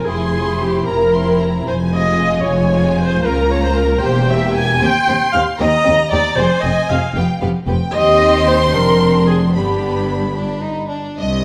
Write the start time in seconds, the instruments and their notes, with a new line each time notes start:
0.05 double bass section F1, cello section F2, violin section C4 E4 C6, viola section G#4
0.32 violin section C4 E4
0.59 viola section G4
0.86 double bass section F1, cello section F2, viola section A#4, violin section A#5
1.12 violin section C4 E4 C6
1.39 violin section A#5
1.65 double bass section F1, cello section F2, viola section C5, violin section G#5
1.91 violin section G#3 F4, viola section D#5
2.43 double bass section F1, cello section F2, viola section C#5, violin section G#5
2.70 violin section G#3 F4
2.97 viola section C5
3.23 double bass section C#2, cello section C#2, violin section A#3 F4 A#5, viola section A#4
3.49 violin section A#3 F4, viola section C#5
3.63 viola section C5
3.77 viola section A#4
4.01 double bass section E1, cello section E2, violin section A#3 G4 G5, viola section C5
4.28 violin section A#3 G4, viola section E5
4.54 viola section G#5
4.80 double bass section D#2, cello section D#2, violin section C4 G4 C6, viola section G5
5.08 double bass section D#2, cello section D#2, violin section C4 G4
5.32 double bass section D#2, cello section D#2, violin section C4 G4, viola section F5
5.59 double bass section D#2, cello section D#2, violin section C4 G4 A#5, viola section D#5
5.85 double bass section D#2, cello section D#2, violin section C4 G4
6.11 double bass section D#2, cello section D#2, violin section C4 G4, viola section D5
6.37 double bass section F1, cello section F2, violin section C4 G#4 G#5, viola section C5
6.63 double bass section F1, cello section F2, violin section C4 G#4, viola section D#5
6.89 double bass section F1, cello section F2, violin section C4 G#4, viola section F5
7.14 double bass section F1, cello section F2, violin section B3 G4 G5
7.40 double bass section F1, cello section F2, violin section B3 G4 F5
7.67 double bass section F1, cello section F2, violin section B3 G4 G5
7.94 double bass section D#2, cello section D#2, violin section C4 G4 C6, viola section D#5
8.46 viola section C5
8.73 double bass section F1, cello section F2, violin section C4 D4, viola section A#4
9.27 viola section G#4
9.54 double bass section G1, cello section G2, violin section B3 D4 B5, viola section G4
10.36 violin section D4
10.64 violin section D#4
10.90 violin section D4
11.18 double bass section C2, cello section C2, violin section D#5